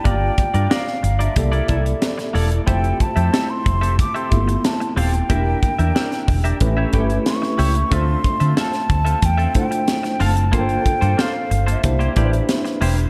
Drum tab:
HH |x-xxx-xxxxxxxxox|xxxxx-xxxxxxxxox|x-xxxxoxx-xxx-ox|x-xxxxxxxxxxxxox|
SD |----oo------oo--|----o-------o---|----oo------oo--|----oo------oo--|
BD |o-o-----o-o-----|o-o---o-o-o-----|o-o---o-o-o-----|o-o---o-o-o-----|

HH |xxxxx-xxxxxxxxox|
SD |----o-------oo--|
BD |o-o-----o-o-----|